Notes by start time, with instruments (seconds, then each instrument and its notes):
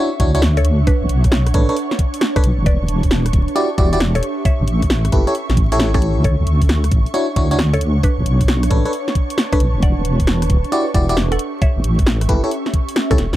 Already playing: fm electric piano D4 E4 F#4 C#5, ambient pad D4 C#5 E5 F#5 C#6
0.20 wobble bass D2, fm electric piano D4 E4 F#4 C#5, kick, closed hi-hat
0.35 fm electric piano D4 E4 F#4 C#5, closed hi-hat
0.42 snare
0.57 synth pluck A4 C#5, closed hi-hat
0.65 closed hi-hat
0.87 synth pluck D4 B4, kick, closed hi-hat
1.02 wobble bass B1
1.09 wobble bass B1, closed hi-hat
1.24 kick, cross-stick, closed hi-hat
1.32 snare
1.46 ambient pad B4, cross-stick, closed hi-hat
1.54 wobble bass A1, fm electric piano D4 A4 B4 C#5, kick, closed hi-hat
1.69 fm electric piano D4 A4 B4 C#5, ambient pad A5, closed hi-hat
1.76 closed hi-hat
1.91 snare
1.99 kick, closed hi-hat
2.14 closed hi-hat
2.21 snare
2.36 synth pluck D4 B4, fm electric piano D4 A4 B4 C#5, kick, cross-stick, closed hi-hat
2.44 wobble bass B1, closed hi-hat
2.59 wobble bass E1
2.66 synth pluck B4 D5, kick, closed hi-hat
2.80 wobble bass E1, ambient pad G4
2.85 wobble bass E1, ambient pad E5, closed hi-hat
3.03 kick, closed hi-hat
3.11 snare
3.26 cross-stick, closed hi-hat
3.33 wobble bass D1, kick, closed hi-hat
3.48 closed hi-hat
3.56 fm electric piano E4 F#4 G4 D5, closed hi-hat
3.78 wobble bass E1, fm electric piano E4 F#4 G4 D5, kick, closed hi-hat
3.93 fm electric piano E4 F#4 G4 D5, closed hi-hat
4.00 snare
4.15 synth pluck A4 C#5, closed hi-hat
4.23 ambient pad C#4, closed hi-hat
4.45 synth pluck C#5 E5, kick, closed hi-hat
4.60 wobble bass A1
4.68 wobble bass A1, closed hi-hat
4.76 ambient pad A4
4.82 kick, cross-stick, closed hi-hat
4.90 snare
5.05 cross-stick, closed hi-hat
5.12 wobble bass G1, fm electric piano E4 G4 A4 B4, kick, closed hi-hat
5.27 fm electric piano E4 G4 A4 C#5, closed hi-hat
5.35 closed hi-hat
5.50 wobble bass A1, snare
5.57 kick, closed hi-hat
5.72 fm electric piano E4 G4 A4 C#5, closed hi-hat
5.80 snare
5.94 synth pluck C#4 A4, fm electric piano E4 G4 A4 C#5, kick, cross-stick, closed hi-hat
6.02 closed hi-hat
6.17 wobble bass D2
6.24 ambient pad D4, synth pluck A4 C#5, kick, closed hi-hat
6.39 wobble bass D2
6.47 wobble bass D2, closed hi-hat
6.51 ambient pad C#5
6.62 kick, closed hi-hat
6.69 snare
6.75 ambient pad F#5
6.84 cross-stick, closed hi-hat
6.91 wobble bass A1, kick, closed hi-hat
7.06 closed hi-hat
7.14 fm electric piano D4 E4 F#4 C#5, closed hi-hat
7.36 wobble bass D2, fm electric piano D4 E4 F#4 C#5, kick, closed hi-hat
7.51 fm electric piano D4 E4 F#4 C#5, closed hi-hat
7.59 snare
7.74 synth pluck A4 C#5, closed hi-hat
7.81 closed hi-hat
8.03 synth pluck D4 B4, kick, closed hi-hat
8.18 wobble bass B1
8.26 wobble bass B1, closed hi-hat
8.41 ambient pad B4, kick, cross-stick, closed hi-hat
8.47 ambient pad A5, snare
8.63 cross-stick, closed hi-hat
8.71 wobble bass A1, fm electric piano D4 A4 B4 C#5, kick, closed hi-hat
8.85 fm electric piano D4 A4 B4 C#5, closed hi-hat
8.93 closed hi-hat
9.08 snare
9.15 kick, closed hi-hat
9.30 closed hi-hat
9.38 snare
9.53 fm electric piano D4 A4 B4 C#5, synth pluck D4 B4, kick, cross-stick, closed hi-hat
9.60 wobble bass B1, closed hi-hat
9.75 wobble bass E1
9.82 synth pluck D5 F#5, kick, closed hi-hat
9.97 wobble bass E1
10.05 wobble bass E1, closed hi-hat
10.20 kick, closed hi-hat
10.27 snare
10.36 ambient pad G4
10.42 cross-stick, closed hi-hat
10.50 wobble bass D1, kick, closed hi-hat
10.54 ambient pad E5
10.64 closed hi-hat
10.72 fm electric piano E4 F#4 G4 D5, closed hi-hat
10.94 wobble bass E1, fm electric piano E4 F#4 G4 D5, kick, closed hi-hat
11.09 fm electric piano E4 F#4 G4 D5, closed hi-hat
11.17 snare
11.32 synth pluck A4 F#5, closed hi-hat
11.39 ambient pad C#4, closed hi-hat
11.62 synth pluck C#5 E5, kick, closed hi-hat
11.77 wobble bass A1
11.84 wobble bass A1, closed hi-hat
11.99 kick, cross-stick, closed hi-hat
12.04 ambient pad A4, snare
12.21 cross-stick, closed hi-hat
12.29 wobble bass G1, fm electric piano E4 G4 A4 B4, kick, closed hi-hat
12.44 fm electric piano E4 G4 A4 C#5, closed hi-hat
12.51 closed hi-hat
12.66 snare
12.74 kick, closed hi-hat
12.89 closed hi-hat
12.96 snare, closed hi-hat
13.11 wobble bass C#2, synth pluck C#4 A4, fm electric piano E4 G4 A4 C#5, kick, cross-stick, closed hi-hat
13.18 wobble bass E1, snare, closed hi-hat
13.33 wobble bass E2, snare